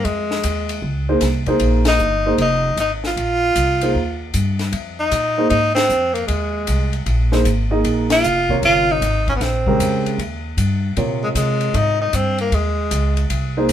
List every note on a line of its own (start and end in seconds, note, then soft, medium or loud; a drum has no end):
0.05 0.42 F2 medium
0.05 0.83 G#3 medium
0.05 ride medium
0.31 snare soft
0.44 0.82 D#2 medium
0.44 hi-hat pedal medium
0.44 ride medium
0.69 ride medium
0.82 1.20 C#2 medium
1.09 1.21 A#3 medium
1.09 1.21 D#4 medium
1.09 1.21 G#4 medium
1.09 1.21 C5 medium
1.21 1.59 C2 medium
1.21 snare soft
1.21 hi-hat pedal soft
1.21 ride medium
1.46 1.97 A#3 medium
1.46 1.97 D#4 medium
1.46 1.97 G#4 medium
1.46 1.97 C5 medium
1.46 kick soft
1.46 ride soft
1.60 1.98 A#1 medium
1.60 ride medium
1.85 2.36 D#4 medium
1.85 snare medium
1.85 ride medium
1.99 2.37 G1 medium
1.99 hi-hat pedal medium
2.26 2.38 A#3 medium
2.26 2.38 D#4 medium
2.26 2.38 G#4 medium
2.26 2.38 C5 medium
2.37 2.76 F1 medium
2.37 ride soft
2.42 2.76 D#4 medium
2.77 3.15 G#1 medium
2.77 2.91 D#4 medium
2.77 hi-hat pedal medium
2.77 ride medium
3.04 4.31 F4 medium
3.04 snare soft
3.16 3.54 A#1 medium
3.16 ride soft
3.56 3.93 C2 medium
3.56 hi-hat pedal medium
3.56 ride medium
3.81 3.94 A#3 soft
3.81 3.94 D#4 soft
3.81 3.94 G#4 soft
3.81 3.94 C5 medium
3.81 ride medium
3.95 4.33 D#2 medium
4.34 4.72 G2 medium
4.34 hi-hat pedal medium
4.34 ride medium
4.59 snare soft
4.59 ride soft
4.72 5.10 F2 medium
4.72 ride medium
5.00 5.48 D#4 medium
5.12 5.49 A#2 medium
5.12 hi-hat pedal medium
5.12 ride medium
5.38 5.49 A#3 medium
5.38 5.50 D#4 medium
5.38 5.50 G#4 medium
5.38 5.50 C5 medium
5.50 5.88 G#2 medium
5.50 5.74 D#4 medium
5.50 ride soft
5.75 6.15 C4 medium
5.75 snare medium
5.75 ride medium
5.90 6.27 F2 medium
5.90 hi-hat pedal medium
6.13 6.26 A#3 medium
6.13 ride soft
6.27 6.66 D#2 medium
6.27 7.02 G#3 medium
6.27 ride medium
6.67 7.06 C2 medium
6.67 hi-hat pedal medium
6.67 ride medium
6.93 ride soft
7.06 7.44 A#1 medium
7.06 ride soft
7.32 7.44 A#3 medium
7.32 7.44 D#4 medium
7.32 7.44 G#4 medium
7.32 7.44 C5 medium
7.32 snare soft
7.44 7.83 G#1 medium
7.44 hi-hat pedal medium
7.44 ride soft
7.71 8.21 A#3 medium
7.71 8.21 D#4 medium
7.71 8.21 G#4 medium
7.71 8.21 D#5 medium
7.84 8.22 A#1 medium
7.84 ride medium
8.10 8.60 F4 loud
8.10 snare medium
8.10 ride medium
8.24 8.62 F1 medium
8.24 hi-hat pedal medium
8.49 8.99 C3 medium
8.49 8.99 F4 medium
8.49 8.99 A#4 medium
8.49 8.99 C#5 medium
8.49 kick soft
8.62 9.00 G1 medium
8.62 8.93 F4 loud
8.62 ride medium
8.92 9.29 D#4 medium
9.01 9.39 G#1 medium
9.01 hi-hat pedal medium
9.01 ride medium
9.28 9.33 C#4 medium
9.28 kick soft
9.28 ride soft
9.36 9.44 B3 medium
9.40 9.78 A#1 medium
9.40 10.19 C4 medium
9.40 snare soft
9.40 ride soft
9.67 10.16 C#3 medium
9.67 10.16 G#3 medium
9.67 10.16 G4 medium
9.67 10.16 A#4 medium
9.67 kick soft
9.80 10.04 F2 medium
9.80 hi-hat pedal soft
9.80 ride medium
10.06 muted upright bass stroke soft
10.06 ride soft
10.18 10.56 D#2 medium
10.18 ride soft
10.57 10.95 G2 medium
10.57 hi-hat pedal soft
10.57 ride medium
10.97 11.34 A#2 medium
10.97 12.06 C3 soft
10.97 12.06 F4 soft
10.97 12.06 A#4 soft
10.97 12.06 C#5 medium
10.97 ride soft
11.23 11.29 G#3 medium
11.35 11.73 C3 medium
11.35 11.77 G#3 medium
11.35 hi-hat pedal medium
11.35 ride medium
11.61 ride soft
11.74 12.12 G#2 medium
11.74 12.01 D#4 loud
11.74 ride medium
12.01 12.17 D#4 medium
12.13 12.51 G2 medium
12.13 12.40 C4 medium
12.13 hi-hat pedal medium
12.13 ride medium
12.38 12.56 A#3 medium
12.38 ride soft
12.52 12.90 D#2 medium
12.52 13.31 G#3 medium
12.52 ride medium
12.91 13.29 C#2 medium
12.91 hi-hat pedal medium
12.91 ride medium
13.17 ride soft
13.30 13.68 C2 medium
13.30 ride medium
13.57 13.68 A#3 medium
13.57 13.68 D#4 medium
13.57 13.69 G#4 medium
13.57 13.69 C5 medium
13.69 13.73 G#1 medium
13.69 hi-hat pedal medium
13.69 ride medium